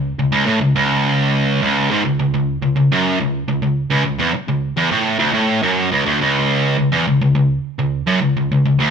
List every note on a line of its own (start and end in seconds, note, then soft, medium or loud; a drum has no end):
0.00 0.12 C#2 medium
0.19 0.31 C#2 medium
0.32 0.46 C#2 loud
0.46 0.60 A2 loud
0.61 0.75 C#2 medium
0.76 1.61 C#2 loud
1.62 1.90 C#2 loud
1.91 2.04 G#2 loud
2.05 2.18 C#2 medium
2.20 2.33 C#2 medium
2.34 2.57 C#2 medium
2.63 2.75 C#2 medium
2.76 2.91 C#2 medium
2.92 3.20 F#2 loud
3.20 3.43 C#2 medium
3.48 3.62 C#2 medium
3.63 3.86 C#2 medium
3.91 4.04 C#2 loud
4.05 4.19 C#2 medium
4.19 4.33 E2 loud
4.34 muted distorted electric guitar stroke medium
4.48 4.72 C#2 medium
4.77 4.91 E2 loud
4.91 5.19 A2 loud
5.19 5.33 D2 loud
5.34 5.62 A2 loud
5.63 5.91 F#2 loud
5.92 6.05 C#2 loud
6.06 6.19 D2 medium
6.21 6.77 C#2 loud
6.78 6.91 C#2 medium
6.92 7.05 E2 medium
7.07 7.20 C#2 medium
7.21 7.34 C#2 medium
7.35 7.58 C#2 medium
7.79 8.01 C#2 medium
8.07 8.20 F#2 loud
8.22 8.35 C#2 medium
8.37 8.50 C#2 medium
8.52 8.64 C#2 medium
8.65 8.79 C#2 medium
8.80 8.90 D2 loud